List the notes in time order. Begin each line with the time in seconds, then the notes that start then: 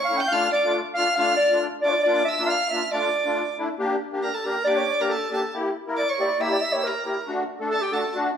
Already playing: C#6
0.04 F5
0.10 A3 C#4 E4
0.17 G5 G6
0.28 A3 D4 F4 F5
0.33 F6
0.52 D5 D6
0.64 A3 D4 F4
0.94 A3 D4 F4 F5 F6
1.15 A3 D4 F4 F5 F6
1.36 D5
1.51 A3 D4 F4
1.82 A3 D4 F4 D5 D6
1.88 C#5 D5
2.03 A#3 D4 F4 D5 D6
2.25 E5 E6
2.39 A#3 D4 F4
2.47 F5 F6
2.70 A#3 D4 F4 E5
2.84 E5
2.91 A3 D4 F4 D5 D6
3.25 A3 D4 F4
3.58 A3 D4 E4
3.79 A#3 D4 G4
4.13 A#3 D4 G4
4.23 A#4 A#5
4.33 A4 A5
4.44 A#3 D4 G4 A#4 A#5
4.64 A#3 D4 G4 D5 D6
4.76 C#5 D5
4.84 C#5
4.90 D5
5.00 A#3 D4 G4 A#4 A#5
5.09 A4 A5
5.31 A#3 D4 G4 A4 A5
5.54 A#3 E4 G4
5.87 A#3 E4 A#4
5.97 D5 D6
6.09 C#5 C#6
6.19 A#3 E4 G4 D5
6.40 A#3 E4 G4 E5 E6
6.52 D5
6.62 E5
6.72 A#3 E4 G4 C#5
6.84 A#4 A#5
7.05 A#3 E4 G4 A#4
7.27 A3 D4 F#4
7.60 A3 D4 A4
7.70 A4 A5
7.81 G4 G5
7.92 A3 D4 F#4 A4 A5
8.14 A3 D4 F#4